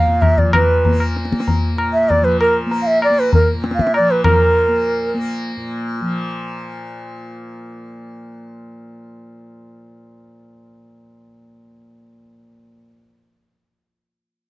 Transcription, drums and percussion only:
0.07 tabla ge
0.22 tabla na, tabla ge
0.38 tabla ge
0.53 tabla na, tabla ge
0.85 tabla tin, tabla ge
1.00 tabla na
1.16 tabla te
1.25 tabla te
1.33 tabla ke
1.40 tabla te
1.48 tabla tin, tabla ge
1.78 tabla na
2.10 tabla tin, tabla ge
2.41 tabla na
2.71 tabla tin
3.02 tabla na
3.33 tabla tin, tabla ge
3.64 tabla te
3.71 tabla te
3.79 tabla ke
3.87 tabla te
3.94 tabla na
4.24 tabla na, tabla ge

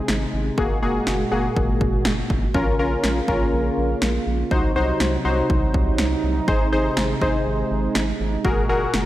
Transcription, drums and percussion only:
0.08 snare
0.58 kick
1.07 snare
1.56 kick
1.81 kick
2.05 snare
2.30 kick
2.54 kick
3.04 snare
3.28 kick
4.02 snare
4.51 kick
5.00 snare
5.50 kick
5.74 kick
5.98 snare
6.48 kick
6.97 snare
7.22 kick
7.95 snare
8.45 kick
8.94 snare

